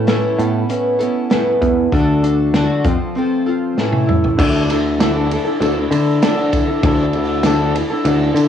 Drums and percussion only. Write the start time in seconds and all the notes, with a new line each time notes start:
0.08 snare, closed hi-hat
0.39 closed hi-hat
0.70 closed hi-hat
1.00 closed hi-hat
1.31 snare, closed hi-hat
1.62 kick, closed hi-hat
1.92 kick, closed hi-hat
2.24 closed hi-hat
2.54 snare, closed hi-hat
2.85 kick, closed hi-hat
3.78 snare
3.92 high tom
4.09 mid tom
4.24 floor tom
4.38 kick, crash, tambourine
4.69 ride, tambourine
5.00 snare, ride, tambourine
5.31 ride
5.62 ride, tambourine
5.91 ride, tambourine
6.22 snare, ride, tambourine
6.53 kick, ride, tambourine
6.83 kick, ride, tambourine
7.13 ride, tambourine
7.43 snare, ride, tambourine
7.75 ride
8.05 ride, tambourine
8.36 ride, tambourine